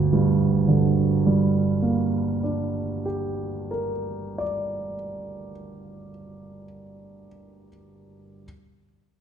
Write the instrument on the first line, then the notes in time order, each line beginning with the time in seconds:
grand piano
Already playing: G1 D2 G4
0.13 G2
0.68 D3
1.26 G3
1.82 A#3
2.43 D4
3.06 G4
3.71 A#4
4.38 D5